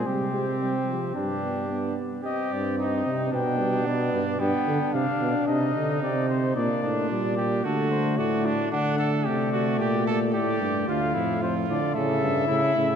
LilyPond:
<<
  \new Staff \with { instrumentName = "Trumpet" } { \time 4/4 \key c \minor \tempo 4 = 111 g'2 g'4. r8 | ees''8 d''8 ees''4 g''4 d''4 | g''4 f''4 ees''4 d''8 c''8 | \key g \minor d''4 d''4 a'8 c''8 d''4 |
fis''4 d''2 d''4 | f''4 c''8 d''8 e''2 | }
  \new Staff \with { instrumentName = "Trumpet" } { \time 4/4 \key c \minor c'2 d'4. r8 | g'4 ees'4 d'2 | b4 d'4 ees'2 | \key g \minor d'8 d'4 g'8 fis'4 fis'8 d'8 |
d'8 a'8 g'8 fis'8 g'8 a'8 g'4 | f'8 e'8 f'4 a'4 e'4 | }
  \new Staff \with { instrumentName = "Trombone" } { \clef bass \time 4/4 \key c \minor g8 aes8 g8 f8 g8 b8 b4 | c'2 b8 g8 b4 | d'2. c'4 | \key g \minor bes4 g4 a2 |
a1 | a8 a,4 d8 cis4 cis8 a,8 | }
  \new Staff \with { instrumentName = "Euphonium" } { \clef bass \time 4/4 \key c \minor c2 g,4. r8 | r8 g,4 c8 b,4 b,8 g,8 | g,8 d8 c8 b,8 c8 d8 c4 | \key g \minor bes,8 a,8 bes,4 d4 a,4 |
d4 c4 bes,4 a,8 g,8 | d,8 f,8 f,8 a,8 a,8 g,8 a,8 cis8 | }
>>